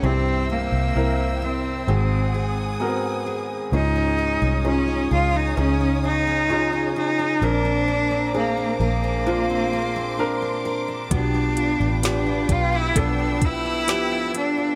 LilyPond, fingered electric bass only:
\new Staff \with { instrumentName = "Fingered electric bass" } { \clef bass \time 4/4 \key aes \major \tempo 4 = 65 c,8. c,16 c,4 aes,,4 r4 | \key des \lydian des,8. c,8. des,8 des,4. r8 | bes,,4. bes,,2 r8 | b,,8. a,,8. b,,8 b,,4. r8 | }